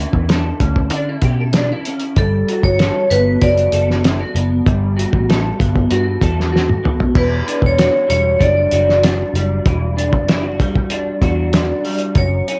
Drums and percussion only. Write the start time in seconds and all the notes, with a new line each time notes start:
0.13 kick
0.29 snare, closed hi-hat
0.60 kick, closed hi-hat
0.76 kick
0.90 closed hi-hat
1.22 kick, closed hi-hat
1.53 snare, closed hi-hat
1.85 closed hi-hat
2.00 closed hi-hat
2.16 kick, closed hi-hat
2.48 closed hi-hat
2.63 kick
2.79 snare, closed hi-hat
3.11 closed hi-hat
3.41 kick, closed hi-hat
3.57 closed hi-hat
3.72 closed hi-hat
3.90 snare
4.04 snare, closed hi-hat
4.36 closed hi-hat
4.66 kick, closed hi-hat
4.99 closed hi-hat
5.13 kick
5.30 snare, closed hi-hat
5.60 kick, closed hi-hat
5.76 kick
5.91 closed hi-hat
6.22 kick, closed hi-hat
6.40 snare
6.56 snare
6.69 high tom
6.85 mid tom
7.00 floor tom
7.15 kick, crash
7.48 closed hi-hat
7.62 kick
7.79 snare, closed hi-hat
8.10 closed hi-hat
8.41 kick, closed hi-hat
8.71 closed hi-hat
8.89 snare
9.03 snare, closed hi-hat
9.35 closed hi-hat
9.66 kick, closed hi-hat
9.98 closed hi-hat
10.13 kick
10.28 snare, closed hi-hat
10.60 kick, closed hi-hat
10.75 kick
10.90 closed hi-hat
11.22 kick, closed hi-hat
11.53 snare, closed hi-hat
11.85 open hi-hat
11.99 closed hi-hat
12.15 kick, closed hi-hat
12.48 closed hi-hat